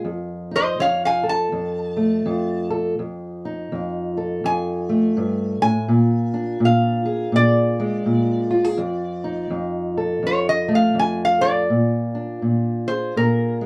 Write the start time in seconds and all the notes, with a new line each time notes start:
0.04 F2
0.51 D#4
0.56 C5 D#5
0.79 F2 C#5 F5
1.05 F5 G#5
1.23 A4
1.29 A5
1.52 F2
1.97 A3
2.26 F2
2.70 A4
2.99 F2
3.45 D#4
3.72 F2
4.17 A4
4.44 F2 G#5
4.89 A3
5.17 G2
5.62 A2 G#5
5.88 A#2
6.34 D4
6.60 A#2
6.65 F5
7.06 G#4
7.32 A#2 D5
7.80 G#3
8.06 A#2
8.51 F4
8.64 G#4
8.77 F2
9.24 D#4
9.50 F2
9.97 A4
10.23 F2
10.27 C#5
10.49 D#5
10.68 A3
10.75 F5
10.95 F2
10.99 G#5
11.25 F5
11.41 A4 D5
11.70 A#2
12.15 D4
12.42 A#2
12.88 G#4 C5
13.16 A#2 A#4
13.61 G#3